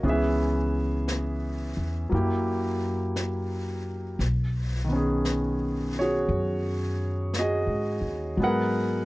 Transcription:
0.03 C#2 E3 B3 C#4 G#4, brush sweep
0.09 G#4 B4 E5
1.08 brush sweep, snare, hi-hat pedal
1.77 E2
2.09 F#2 F#3 A#3 E4, brush sweep
2.15 G4
3.16 brush sweep, snare, hi-hat pedal
4.19 B1, brush sweep, snare
4.84 D#3
4.89 B3 C#4
4.96 G#4
5.25 brush sweep, snare, hi-hat pedal
5.99 F#4 G#4 C#5
6.29 F#2, brush sweep
7.34 brush sweep, snare, hi-hat pedal
7.39 F#4 G#4 D#5
7.67 G#2
8.01 D#2
8.37 G#2 F#3 G#3 B3, brush sweep
8.41 G#4 A#4 B4 F#5

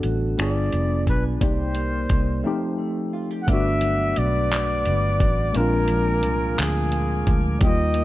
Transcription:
Already playing: D3 G3 B3 D4 F#4 A4 B4
0.03 A1 F#4, closed hi-hat
0.38 G1 G3 B3 D4 F4 D5, finger snap, closed hi-hat
0.42 G#4
0.72 F1 B3, closed hi-hat
1.07 B1 G#4 B4, kick, closed hi-hat
1.41 C2 C3 A#3 D#4 G4 C5 D5, kick, closed hi-hat
1.75 A#3, closed hi-hat
2.09 C2 D#4, kick, closed hi-hat
2.44 F3 A3 C4 D#4 G4
2.78 A3
3.13 F4
3.31 G4
3.42 F#5
3.47 G1 G2 A3 B3 D4 B4 D5 E5 F#5 D6, kick, closed hi-hat
3.51 D4 F#4
3.81 F#3, closed hi-hat
4.16 B1 B3 D5, closed hi-hat
4.51 F#3, clap, closed hi-hat
4.85 G1 B3, closed hi-hat
5.20 A1 F#3, kick, closed hi-hat
5.53 A#1 A#2 G#3 C4 D4 A#4 F5 G#5, closed hi-hat
5.57 D4 F4
5.88 F3, closed hi-hat
6.23 C2 G#3, closed hi-hat
6.59 D2 F3 G#4, clap, closed hi-hat
6.92 G#3, closed hi-hat
7.27 D2 F3, kick, closed hi-hat
7.59 D#2 D#3 G3 A#3 G4 A#4 D#5 G5, kick, closed hi-hat
7.66 F4
7.94 A#3, closed hi-hat

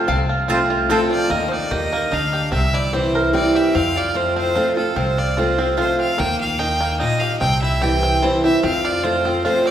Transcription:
Already playing: F4
0.08 C2 C3 C4 F5
0.29 F4
0.48 F3 A3 C4 F4 C5 A5
0.70 F4
0.90 F3 A3 C4 F4 A4 C5 A5
1.11 F4 D5
1.30 D#2 D#3 A#3 D#5
1.48 D#4 C5
1.54 D5
1.71 D#2 D#3 G4 D#5
1.93 A#3
2.12 D2 D4 D#4 F5
2.33 G4
2.52 C2 C3 C4 E5
2.74 E4 D5
2.93 E3 G3 C4 E4 G4 C5
3.15 A#4
3.33 E3 G3 C4 E4 D5
3.55 G4 E5
3.75 F2 C4 F5
3.96 F4 D5
4.14 F3 A3 C4 F4 C5
4.36 C4 C5
4.55 F3 A3 C4 F4
4.77 C4 F4 A4
4.96 C2 C3 C4 C5
5.18 F4 D5
5.37 F3 A3 C4 F4 C5
5.58 C4 F4
5.77 F3 A3 C4 F4 C5
5.99 C4 F5
6.18 D#2 D#3 A#3 G5
6.41 F5
6.59 D#3 D#4 G5
6.81 A#3
7.00 A#2 D#4 D#5
7.20 G4 F5
7.40 C2 C3 C4 G5
7.62 E4 E5
7.82 E3 G3 C4 E4 G4 G5
8.03 C4
8.22 E3 G3 C4 E4 C5
8.44 C4 E4 G4 E5
8.63 F2 C4 F5
8.85 F4 D5
9.03 F3 A3 C4 F4 C5
9.25 C4 F4
9.44 F3 A3 C4 F4 C5
9.66 C4 D5

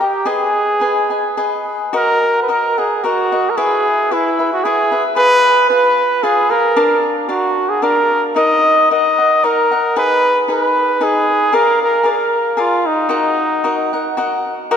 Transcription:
0.00 G4 D#5 G5 A#5
0.25 G#4 B4 D#5 G#5
0.80 G#4 B4 D#5 G#5
1.10 B4 D#5 G#5
1.37 G#4 B4 D#5 G#5
1.93 F#4 A#4 D#5 F#5
2.43 B4
2.48 F#4 A#4 D#5 F#5
2.78 G#4 A#4 D#5 F#5
3.04 F#4 A#4 D#5 F#5
3.32 A#4 D#5 F#5
3.50 A#4
3.57 E4 G#4 B4 E5
4.11 E4 G#4 B4 E5
4.39 G#4 B4 E5
4.53 F#4
4.64 E4 G#4 B4 E5
4.91 G#4 B4 E5
5.16 F4 G#4 B4 F5
5.69 F4 G#4 B4 F5
6.23 F4 G#4 B4 F5
6.49 G#4 A#4 B4 F5
6.76 D4 A#4 D5 F5
7.29 D4 F#4 A#4 D5 F5
7.69 G#4
7.82 D4 A#4 D5 F5
8.36 D#4 A#4 D#5 F#5
8.90 D#4 A#4 D#5 F#5
9.18 A#4 D#5 F#5
9.44 D#4 A#4 D#5 F#5
9.71 A#4 D#5 F#5
9.96 D#4 G#4 B4 D#5
10.48 D#4 G#4 B4 D#5
11.01 D#4 G#4 B4 D#5
11.52 G#4 A#4 D5 F5
11.82 A#4
12.03 G#4 A#4 D5 F5
12.08 A#4
12.57 F4 G#4 A#4 D5 F5
12.86 D#4
13.09 F#4 A#4 D#5 F#5
13.64 F#4 A#4 D#5 F#5
13.93 A#4 D#5 F#5
14.17 F#4 A#4 D#5 F#5
14.71 F#4 A#4 D#5 F#5

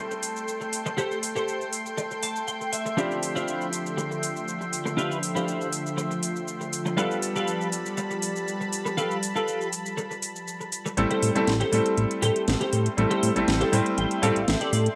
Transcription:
Already playing: G3 A3 C4 E4 A4 G5 C6
0.11 muted clean electric guitar stroke, shaker
0.23 open hi-hat, shaker
0.36 shaker
0.48 shaker
0.61 muted clean electric guitar stroke, shaker
0.73 open hi-hat, shaker
0.86 muted clean electric guitar stroke, shaker
0.98 G4 A4 C5, shaker
1.11 shaker
1.23 open hi-hat, shaker
1.36 G4 A4 C5, shaker
1.48 shaker
1.61 shaker
1.73 open hi-hat, shaker
1.86 shaker
1.98 muted clean electric guitar stroke, shaker
2.11 muted clean electric guitar stroke, shaker
2.23 A5, open hi-hat, shaker
2.36 shaker
2.48 G5, shaker
2.61 muted clean electric guitar stroke, shaker
2.73 E5, open hi-hat, shaker
2.86 muted clean electric guitar stroke, shaker
2.97 D3 F3 C4 D4 E4 F4 G4 C5 E5, shaker
3.11 shaker
3.23 open hi-hat, shaker
3.35 D4 E4 F4 G4 C5, shaker
3.48 shaker
3.61 shaker
3.73 open hi-hat, shaker
3.86 shaker
3.97 muted clean electric guitar stroke, shaker
4.11 muted clean electric guitar stroke, shaker
4.23 open hi-hat, shaker
4.36 shaker
4.48 shaker
4.61 muted clean electric guitar stroke, shaker
4.73 open hi-hat, shaker
4.86 muted clean electric guitar stroke, shaker
4.97 D4 E4 F4 G4 B4, shaker
5.12 shaker
5.23 open hi-hat, shaker
5.35 D4 E4 F4 G4 C5, shaker
5.48 shaker
5.61 shaker
5.73 open hi-hat, shaker
5.86 shaker
5.97 muted clean electric guitar stroke, shaker
6.11 muted clean electric guitar stroke, shaker
6.23 open hi-hat, shaker
6.36 shaker
6.48 shaker
6.61 muted clean electric guitar stroke, shaker
6.73 open hi-hat, shaker
6.86 muted clean electric guitar stroke, shaker
6.96 G3 B3 D4 F4 G4 A4 B4 A5 B5, shaker
7.11 shaker
7.22 open hi-hat, shaker
7.36 F4 G4 A4 B4, shaker
7.48 shaker
7.61 shaker
7.72 open hi-hat, shaker
7.86 shaker
7.97 muted clean electric guitar stroke, shaker
8.11 muted clean electric guitar stroke, shaker
8.22 open hi-hat, shaker
8.36 shaker
8.48 shaker
8.60 muted clean electric guitar stroke, shaker
8.73 open hi-hat, shaker
8.86 muted clean electric guitar stroke, shaker
8.97 F4 G4 A4 B4, shaker
9.11 shaker
9.23 open hi-hat, shaker
9.35 F4 G4 A4 B4, shaker
9.48 shaker
9.61 shaker
9.73 open hi-hat, shaker
9.86 shaker
9.97 muted clean electric guitar stroke, shaker
10.11 muted clean electric guitar stroke, shaker
10.22 open hi-hat, shaker
10.36 shaker
10.48 shaker
10.61 muted clean electric guitar stroke, shaker
10.72 open hi-hat, shaker
10.86 muted clean electric guitar stroke, shaker
10.97 A1 G3 A3 C4 E4 A4 E5 G5 C6, closed hi-hat
11.11 G4 A4 C5, closed hi-hat
11.22 A2, open hi-hat
11.35 G3 A3 C4 E4 A4, closed hi-hat
11.47 A1, muted clean electric guitar stroke, snare, closed hi-hat
11.60 G4 A4 C5, closed hi-hat
11.72 A2 G3 A3 C4 E4 A4, open hi-hat
11.86 closed hi-hat
11.98 A1, closed hi-hat
12.11 closed hi-hat
12.22 A2 G4 A4 C5, open hi-hat
12.36 closed hi-hat
12.48 A1, snare, closed hi-hat
12.61 G4 A4 C5, closed hi-hat
12.73 A2, open hi-hat
12.86 closed hi-hat
12.97 A1 G3 A3 C4 E4 A4, closed hi-hat
13.11 G4 A4 C5, closed hi-hat
13.23 A2, open hi-hat
13.36 A1 G3 A3 C4 E4 A4, closed hi-hat
13.48 A1, muted clean electric guitar stroke, snare, closed hi-hat
13.61 G4 A4 C5, closed hi-hat
13.72 A2 G3 A3 C4 E4 C5 A5, open hi-hat
13.86 closed hi-hat
13.98 A1 G5, closed hi-hat
14.11 closed hi-hat
14.22 A2 G3 A3 C4 E4 G4 A4 D5 F5, open hi-hat
14.36 A1, closed hi-hat
14.48 A1 E5, snare, closed hi-hat
14.61 G4 A4 D5, closed hi-hat
14.73 A2 D5, open hi-hat
14.86 closed hi-hat

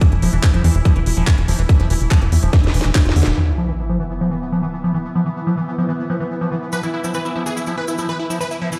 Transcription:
Already playing: E3 E4
0.01 E3, kick, closed hi-hat
0.12 E1, closed hi-hat
0.22 E1 F3, open hi-hat
0.33 E1 E3
0.43 kick, clap, closed hi-hat
0.54 E1 F3, closed hi-hat
0.64 E2 E3, open hi-hat
0.75 E1, closed hi-hat
0.85 F3, kick, closed hi-hat
0.96 E1 E3, closed hi-hat
1.06 E1, open hi-hat
1.17 E1 F3, closed hi-hat
1.27 E3, kick, clap, closed hi-hat
1.38 E1, closed hi-hat
1.48 E1 F3, open hi-hat
1.59 E1 E3, closed hi-hat
1.69 kick, closed hi-hat
1.80 E1 F3, closed hi-hat
1.90 E1 E3, open hi-hat
2.01 E1, closed hi-hat
2.11 F3, kick, clap, closed hi-hat
2.22 E1 E3, closed hi-hat
2.32 E2, open hi-hat
2.43 E1 F3, closed hi-hat
2.53 E3, kick, snare, closed hi-hat
2.64 E1, snare, closed hi-hat
2.74 E1 E3, open hi-hat
2.81 E1 E3, snare, closed hi-hat
2.95 kick, snare, clap, open hi-hat
3.06 F1 F4, snare, closed hi-hat
3.16 E2 D3, open hi-hat
3.23 E1, snare, closed hi-hat
3.37 E3 B3 E4, sub drop
3.58 F3
3.68 E3
3.89 F3
4.00 E3
4.15 B4
4.21 F3
4.31 E3
4.52 F3
4.63 E3
4.73 E5
4.84 F3
4.94 E3
5.15 F3
5.26 E3
5.47 F3
5.57 E3
5.78 F3
5.89 E3
6.10 F3
6.20 E3
6.41 F3
6.52 E3
6.72 F3 B4, cabasa
6.83 E3 E4, cabasa
6.94 E4
7.04 F3 E4, cabasa
7.14 E3 B4, cabasa
7.25 E4, cabasa
7.36 F3 E4
7.46 E3 G#4, cabasa
7.57 E4, cabasa
7.66 F3 E4, cabasa
7.78 E3 B4
7.88 E4, cabasa
7.98 F3 E4, cabasa
8.09 E3 B4, cabasa
8.20 E4
8.30 F3 E4, cabasa
8.40 E3 B4, cabasa
8.51 E4, cabasa
8.61 F3 E4
8.72 E3 E4, cabasa

